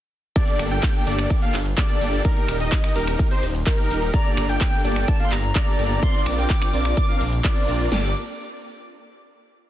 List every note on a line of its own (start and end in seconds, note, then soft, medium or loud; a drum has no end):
0.36 0.68 A#3 medium
0.36 0.68 D4 medium
0.36 0.68 G4 medium
0.36 0.68 A4 medium
0.36 0.68 D5 loud
0.36 kick loud
0.36 closed hi-hat loud
0.36 ride medium
0.36 cabasa soft
0.48 closed hi-hat soft
0.59 0.79 G1 loud
0.59 finger snap medium
0.59 open hi-hat loud
0.59 cabasa medium
0.71 1.04 A#3 medium
0.71 1.04 D4 medium
0.71 1.04 G4 medium
0.71 1.04 A4 medium
0.71 1.04 G5 loud
0.71 1.04 G5 medium
0.71 closed hi-hat soft
0.71 cabasa soft
0.83 kick loud
0.83 clap loud
0.83 closed hi-hat loud
0.83 ride medium
0.83 cabasa soft
0.95 closed hi-hat soft
0.95 cabasa soft
1.07 1.26 G1 medium
1.07 1.39 A#3 medium
1.07 1.39 D4 medium
1.07 1.39 G4 medium
1.07 1.39 A4 medium
1.07 1.39 D5 medium
1.07 open hi-hat medium
1.07 cabasa medium
1.19 finger snap medium
1.19 closed hi-hat soft
1.19 cabasa soft
1.30 kick loud
1.30 closed hi-hat medium
1.30 ride medium
1.30 cabasa soft
1.42 1.55 A#3 medium
1.42 1.55 D4 medium
1.42 1.55 G4 medium
1.42 1.55 A4 medium
1.42 1.55 F5 loud
1.42 closed hi-hat soft
1.42 cabasa soft
1.54 1.74 G1 loud
1.54 clap medium
1.54 open hi-hat loud
1.54 cabasa medium
1.66 closed hi-hat soft
1.66 cabasa soft
1.78 2.22 A#3 medium
1.78 2.22 D4 medium
1.78 2.22 G4 medium
1.78 2.22 A4 medium
1.78 2.22 D5 loud
1.78 kick loud
1.78 clap loud
1.78 closed hi-hat loud
1.78 ride medium
1.78 cabasa soft
1.89 closed hi-hat soft
2.01 2.21 G1 medium
2.01 open hi-hat loud
2.01 cabasa medium
2.13 closed hi-hat soft
2.13 cabasa soft
2.25 2.57 D#4 medium
2.25 2.57 G4 medium
2.25 2.57 A#4 loud
2.25 kick loud
2.25 closed hi-hat medium
2.25 ride medium
2.25 cabasa soft
2.37 closed hi-hat soft
2.48 2.68 D#1 loud
2.48 finger snap medium
2.48 open hi-hat loud
2.48 cabasa medium
2.60 2.93 D#4 medium
2.60 2.93 G4 medium
2.60 2.93 D#5 loud
2.60 2.93 D#5 medium
2.60 closed hi-hat soft
2.60 cabasa soft
2.72 kick loud
2.72 clap loud
2.72 closed hi-hat medium
2.72 ride medium
2.72 cabasa soft
2.84 finger snap medium
2.84 closed hi-hat soft
2.84 cabasa soft
2.96 3.15 D#1 medium
2.96 3.28 D#4 medium
2.96 3.28 G4 medium
2.96 3.28 A#4 medium
2.96 open hi-hat loud
2.96 cabasa medium
3.07 finger snap medium
3.07 closed hi-hat soft
3.07 cabasa soft
3.19 kick loud
3.19 closed hi-hat medium
3.19 ride medium
3.19 cabasa soft
3.31 3.44 D#4 medium
3.31 3.44 G4 medium
3.31 3.44 C5 loud
3.31 closed hi-hat soft
3.31 cabasa soft
3.43 3.63 D#1 loud
3.43 open hi-hat loud
3.43 cabasa medium
3.55 closed hi-hat soft
3.55 cabasa soft
3.66 4.11 D#4 loud
3.66 4.11 G4 medium
3.66 4.11 A#4 loud
3.66 kick loud
3.66 clap loud
3.66 closed hi-hat medium
3.66 ride medium
3.66 cabasa soft
3.78 closed hi-hat soft
3.90 4.10 D#1 medium
3.90 open hi-hat loud
3.90 cabasa medium
4.02 closed hi-hat soft
4.02 cabasa soft
4.14 4.46 A#3 medium
4.14 4.46 D4 medium
4.14 4.46 G4 medium
4.14 4.46 A4 medium
4.14 4.46 D5 loud
4.14 4.51 A#5 loud
4.14 kick loud
4.14 closed hi-hat medium
4.14 ride medium
4.14 cabasa soft
4.26 closed hi-hat soft
4.37 4.57 G1 loud
4.37 finger snap medium
4.37 open hi-hat loud
4.37 cabasa medium
4.49 4.82 A#3 medium
4.49 4.82 D4 medium
4.49 4.82 G4 medium
4.49 4.82 A4 medium
4.49 4.82 G5 loud
4.49 4.84 G5 medium
4.49 closed hi-hat soft
4.49 cabasa soft
4.61 kick loud
4.61 clap loud
4.61 closed hi-hat medium
4.61 ride medium
4.61 cabasa soft
4.73 closed hi-hat soft
4.73 cabasa soft
4.84 5.04 G1 medium
4.84 5.17 A#3 medium
4.84 5.17 D4 medium
4.84 5.17 G4 medium
4.84 5.17 A4 medium
4.84 5.17 D5 medium
4.84 5.10 G5 medium
4.84 open hi-hat loud
4.84 cabasa medium
4.96 finger snap medium
4.96 closed hi-hat soft
4.96 cabasa soft
5.08 5.24 A5 loud
5.08 kick loud
5.08 closed hi-hat medium
5.08 ride medium
5.08 cabasa soft
5.20 5.33 A#3 medium
5.20 5.33 D4 medium
5.20 5.33 G4 medium
5.20 5.33 A4 medium
5.20 5.33 F5 loud
5.20 closed hi-hat soft
5.20 cabasa soft
5.25 5.33 C6 medium
5.32 5.52 G1 medium
5.32 5.79 A#5 loud
5.32 clap medium
5.32 open hi-hat loud
5.32 cabasa medium
5.44 closed hi-hat soft
5.44 cabasa soft
5.55 6.00 A#3 loud
5.55 6.00 D4 medium
5.55 6.00 G4 medium
5.55 6.00 A4 medium
5.55 6.00 D5 loud
5.55 kick loud
5.55 clap loud
5.55 closed hi-hat medium
5.55 ride medium
5.55 cabasa soft
5.67 closed hi-hat soft
5.79 5.99 G1 medium
5.79 6.05 A#5 loud
5.79 open hi-hat loud
5.79 cabasa medium
5.91 closed hi-hat soft
5.91 cabasa soft
6.02 6.35 C4 medium
6.02 6.35 D4 medium
6.02 6.35 F4 medium
6.02 6.35 A#4 medium
6.02 6.35 D5 loud
6.02 6.28 C6 loud
6.02 kick loud
6.02 closed hi-hat medium
6.02 ride medium
6.02 cabasa soft
6.14 closed hi-hat soft
6.26 6.46 A#1 loud
6.26 7.68 D6 loud
6.26 finger snap medium
6.26 open hi-hat loud
6.26 cabasa medium
6.38 6.71 C4 medium
6.38 6.71 D4 medium
6.38 6.71 F4 medium
6.38 6.71 A#4 medium
6.38 6.71 G5 loud
6.38 6.71 G5 medium
6.38 closed hi-hat soft
6.38 cabasa soft
6.50 kick loud
6.50 clap loud
6.50 closed hi-hat medium
6.50 ride medium
6.50 cabasa soft
6.62 finger snap medium
6.62 closed hi-hat soft
6.62 cabasa soft
6.73 6.93 A#1 medium
6.73 7.06 C4 medium
6.73 7.06 D4 medium
6.73 7.06 F4 medium
6.73 7.06 A#4 medium
6.73 7.06 D5 medium
6.73 open hi-hat loud
6.73 cabasa medium
6.85 finger snap medium
6.85 closed hi-hat soft
6.85 cabasa soft
6.97 kick loud
6.97 closed hi-hat medium
6.97 ride medium
6.97 cabasa soft
7.09 7.22 C4 medium
7.09 7.22 D4 medium
7.09 7.22 F4 medium
7.09 7.22 A#4 medium
7.09 7.22 F5 loud
7.09 closed hi-hat soft
7.09 cabasa soft
7.21 7.41 A#1 loud
7.21 open hi-hat loud
7.21 cabasa medium
7.33 closed hi-hat soft
7.33 cabasa soft
7.44 7.89 C4 loud
7.44 7.89 D4 medium
7.44 7.89 F4 medium
7.44 7.89 A#4 medium
7.44 7.89 D5 loud
7.44 kick loud
7.44 clap loud
7.44 closed hi-hat medium
7.44 ride medium
7.44 cabasa soft
7.56 closed hi-hat soft
7.68 7.88 A#1 loud
7.68 open hi-hat loud
7.68 cabasa medium
7.80 closed hi-hat soft
7.80 cabasa soft
7.92 8.14 G1 loud
7.92 8.09 A#3 medium
7.92 8.09 D4 medium
7.92 8.09 G4 medium
7.92 8.09 A4 medium
7.92 8.09 D5 medium
7.92 8.09 D5 loud
7.92 8.14 D6 medium
7.92 snare loud